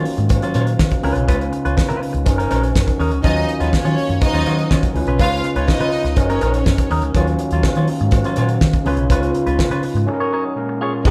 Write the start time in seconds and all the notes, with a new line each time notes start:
Already playing: D#3 F#3 A#3 C#4 F4 F#4 F5
0.05 muted clean electric guitar stroke, open hi-hat
0.17 G#2, muted clean electric guitar stroke, closed hi-hat
0.29 muted clean electric guitar stroke, kick, closed hi-hat, cowbell
0.42 F#3 C#4 F4, closed hi-hat
0.54 A#2 F#3 C#4 F4, closed hi-hat, cowbell
0.67 muted clean electric guitar stroke, closed hi-hat
0.79 D#3, kick, snare, cowbell
0.91 muted clean electric guitar stroke, kick, closed hi-hat
1.02 C#2 C#3 G#3 B3 C#4 D#4 F4 B4, open hi-hat
1.15 B1, muted clean electric guitar stroke, closed hi-hat
1.28 C#2 C#4 F4 B4, kick, closed hi-hat, cowbell
1.40 muted clean electric guitar stroke, closed hi-hat
1.52 muted clean electric guitar stroke, closed hi-hat
1.65 C#2 C#4 F4 B4, closed hi-hat
1.77 muted clean electric guitar stroke, kick, snare, cowbell
1.89 C#3 C#4 F4 B4, closed hi-hat
2.01 muted clean electric guitar stroke, open hi-hat
2.13 C#2, muted clean electric guitar stroke, closed hi-hat
2.24 F#1 F#3 C#4 D#4 G#4 A#4, muted clean electric guitar stroke, kick, closed hi-hat, cowbell
2.38 C#4 D#4 A#4, closed hi-hat
2.51 A#1 C#4 D#4 A#4, closed hi-hat, cowbell
2.63 muted clean electric guitar stroke, closed hi-hat
2.75 F#2, kick, snare, cowbell
2.87 muted clean electric guitar stroke, kick, closed hi-hat
2.99 D#2 C#4 D#4 A#4, open hi-hat
3.11 C#2, muted clean electric guitar stroke, closed hi-hat
3.22 D#2 D#3 F#3 A#3 C#4 D#4 F4 F#4 D#5 F5, kick, closed hi-hat, cowbell
3.36 muted clean electric guitar stroke, closed hi-hat
3.48 muted clean electric guitar stroke, closed hi-hat
3.60 D#2 F#3 B3 C#4 F4 B4, closed hi-hat
3.73 C#4 C#5, muted clean electric guitar stroke, muted fingered electric bass stroke, kick, snare, cowbell
3.85 D#3 F#3 C#4 F4, closed hi-hat
3.97 muted clean electric guitar stroke, open hi-hat
4.09 F#2, muted clean electric guitar stroke, closed hi-hat
4.21 D#4 D#5, muted clean electric guitar stroke, kick, closed hi-hat, cowbell
4.33 D#2 F#3 C#4 F4, closed hi-hat
4.46 D#3 F#3 C#4 F4, closed hi-hat, cowbell
4.58 muted clean electric guitar stroke, closed hi-hat
4.71 D#3 F#3 C#4 F4, kick, snare, cowbell
4.83 muted clean electric guitar stroke, kick, closed hi-hat
4.93 C#2 C#3 G#3 B3 C#4 D#4 E4 F4 B4, muted clean electric guitar stroke, open hi-hat
5.02 F4
5.06 B1 C#4 F4 B4, closed hi-hat
5.19 C#2 C#4 F4 B4 F5, kick, closed hi-hat, cowbell
5.32 muted clean electric guitar stroke, closed hi-hat
5.44 muted clean electric guitar stroke, closed hi-hat
5.55 C#2 C#4 F4 B4 C#5, closed hi-hat
5.68 D#4 D#5, muted fingered electric bass stroke, muted clean electric guitar stroke, kick, snare, cowbell
5.80 C#3 C#4 F4 B4, closed hi-hat
5.92 muted clean electric guitar stroke, open hi-hat
6.04 C#2, muted clean electric guitar stroke, snare, closed hi-hat
6.16 F#1 F#3 C#4 D#4 G#4 A#4, muted clean electric guitar stroke, kick, closed hi-hat, cowbell
6.29 C#4 D#4 A#4 C#5, closed hi-hat
6.41 A#1 C#4 D#4 A#4, closed hi-hat, cowbell
6.54 C#4 C#5, muted clean electric guitar stroke, closed hi-hat
6.66 F#2, kick, snare, cowbell
6.78 muted clean electric guitar stroke, kick, closed hi-hat
6.90 D#2 C#4 D#4 A#4, open hi-hat
7.02 C#2, muted clean electric guitar stroke, closed hi-hat
7.14 D#2 D#3 F#3 A#3 C#4 F4 F#4 F5, kick, closed hi-hat, cowbell
7.27 muted clean electric guitar stroke, closed hi-hat
7.39 muted clean electric guitar stroke, closed hi-hat
7.51 D#2 F#3 C#4 F4, closed hi-hat
7.63 muted fingered electric bass stroke, muted clean electric guitar stroke, kick, snare, cowbell
7.75 D#3 F#3 C#4 F4, closed hi-hat
7.88 muted clean electric guitar stroke, open hi-hat
8.00 G#2, muted clean electric guitar stroke, closed hi-hat
8.11 muted clean electric guitar stroke, kick, closed hi-hat, cowbell
8.24 F#3 C#4 F4, closed hi-hat
8.36 A#2 F#3 C#4 F4, closed hi-hat, cowbell
8.49 muted clean electric guitar stroke, closed hi-hat
8.61 D#3, kick, snare, cowbell
8.73 muted clean electric guitar stroke, kick, closed hi-hat
8.84 C#2 C#3 G#3 B3 C#4 D#4 F4 B4, open hi-hat
8.97 B1, muted clean electric guitar stroke, closed hi-hat
9.10 C#2 C#4 F4 B4, kick, closed hi-hat, cowbell
9.23 muted clean electric guitar stroke, closed hi-hat
9.35 muted clean electric guitar stroke, closed hi-hat
9.47 C#2 C#4 F4 B4, closed hi-hat
9.59 muted clean electric guitar stroke, muted fingered electric bass stroke, kick, snare, cowbell
9.70 C#3 C#4 F4 B4, closed hi-hat
9.83 muted clean electric guitar stroke, open hi-hat
9.94 G#2, muted clean electric guitar stroke, closed hi-hat
10.06 F#3 C#4 D#4 G#4 A4 A#4, muted clean electric guitar stroke
10.13 A#4
10.20 D#4 A#4 C#5
10.33 D#4 A#4 C#5
10.45 muted clean electric guitar stroke
10.55 A#2 G#3 A#3 C#4 A#4
10.69 muted clean electric guitar stroke
10.81 F4 G#4 C#5
10.94 muted clean electric guitar stroke
11.04 F1 F3 G#3 C4 D#4 G4 G#4 D#5, kick, crash, cowbell